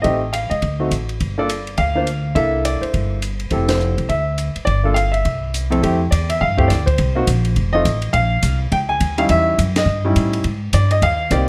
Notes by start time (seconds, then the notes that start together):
0.02 A1 A3 C4 D#4 G4 D#5, kick, ride
0.33 F5, hi-hat pedal, ride
0.50 C#2 D#5, ride
0.62 D2, kick, ride
0.80 A3 C4 D#4 F#4
0.91 A1, hi-hat pedal, ride
1.09 ride
1.20 G1, kick, ride
1.38 A#3 D4 F4 A4 D5
1.49 hi-hat pedal, ride
1.67 ride
1.77 D2 F5, kick, ride
1.95 A#3 D4 F4 C5
2.07 hi-hat pedal, ride
2.35 C2 A#3 D4 E4 A4 E5, kick, ride
2.65 D5, hi-hat pedal, ride
2.81 C5, muted upright bass stroke, ride
2.94 G1, kick, ride
3.22 hi-hat pedal, ride
3.40 ride
3.50 F1 C4 E4 G4 A4, kick, ride
3.69 C5, snare, ride
3.80 hi-hat pedal
3.98 C2, ride
4.09 D2 E5, kick, ride
4.38 hi-hat pedal, ride
4.56 muted upright bass stroke, ride
4.65 G1 D5, kick, ride
4.84 A#3 D4 F4 A4
4.94 F5, hi-hat pedal, ride
5.12 E5, ride
5.25 C2, kick, ride
5.54 hi-hat pedal, ride
5.70 F2 A3 C4 E4 A4, ride
5.82 F2 A3 C4 E4 G4, kick, ride
6.11 E2 D5, kick, hi-hat pedal, ride
6.30 E5, ride
6.41 G2 F5, kick
6.57 A3 C4 E4 G4, kick
6.68 D2 D5, kick, snare, hi-hat pedal, ride
6.86 C5, kick, ride
6.98 C2, kick, ride
7.15 A#3 C4 D#4 F#4
7.27 A#1, kick, hi-hat pedal, ride
7.45 ride
7.56 F1, kick, ride
7.73 A3 C4 D#4 F4 D#5
7.85 A1, kick, hi-hat pedal, ride
8.02 ride
8.13 A#1 F5, kick, ride
8.43 C2, kick, hi-hat pedal, ride
8.72 C#2 G5, kick, ride
8.89 G#5
9.00 D#2, kick, hi-hat pedal, ride
9.18 G3 C#4 D#4 E4 F5, ride
9.29 E2 E5, kick, ride
9.58 F#2, kick, hi-hat pedal, ride
9.76 D#5, snare, ride
9.85 G2
10.05 G3 C#4 D#4 E4
10.16 A2, kick, hi-hat pedal, ride
10.33 ride
10.44 G#2, kick, ride
10.73 G2 D5, kick, hi-hat pedal, ride
10.91 D#5, ride
11.02 D#2 F5, kick, ride
11.31 C2 A#3 C4 D#4 G4 D5, kick, hi-hat pedal, ride